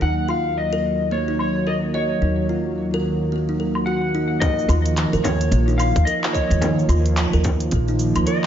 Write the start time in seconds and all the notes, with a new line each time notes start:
Already playing: D#3 A#3
0.00 D#2 F#3 D#4 F#5
0.28 F4 F5, low woodblock
0.58 D#5
0.73 A#4
1.11 A#3 C#5
1.28 D#4
1.39 C#5, low woodblock
1.67 A#4 D#5
1.94 C#5 D#5
2.22 D#2 D#4
2.49 F4
2.94 A#4
3.32 A#3
3.49 D#4
3.60 A#4
3.75 low woodblock
3.86 F#4 F#5
4.15 D#4
4.40 D#3 F3 A#3 D#4 D#5, kick, closed hi-hat, frame drum, cabasa
4.59 cabasa
4.68 D#2 F4, cabasa, low woodblock
4.86 closed hi-hat, cabasa
4.97 clap, closed hi-hat, cabasa
5.13 D#2 A#4, cabasa
5.24 C#5, closed hi-hat, frame drum, cabasa
5.41 closed hi-hat, cabasa
5.51 A#1 A#3, closed hi-hat, cabasa
5.68 D#4, cabasa
5.78 F5, closed hi-hat, cabasa, low woodblock
5.96 D#2, kick, closed hi-hat, cabasa
6.05 A#4 D#5, closed hi-hat, cabasa
6.24 clap, cabasa
6.33 C#5 D#5, kick, cabasa
6.50 D#2, closed hi-hat, cabasa
6.61 D#4, closed hi-hat, frame drum, cabasa
6.79 cabasa
6.89 D#2 F4, cabasa, low woodblock
7.06 closed hi-hat, cabasa
7.17 clap, closed hi-hat, cabasa
7.33 D#2 A#4, cabasa
7.44 kick, closed hi-hat, frame drum, cabasa
7.60 closed hi-hat, cabasa
7.71 A#1 A#3, kick, closed hi-hat, cabasa
7.88 D#4, cabasa
7.99 closed hi-hat, cabasa
8.16 D#2, closed hi-hat, cabasa, low woodblock
8.27 A#4 D#5, closed hi-hat, cabasa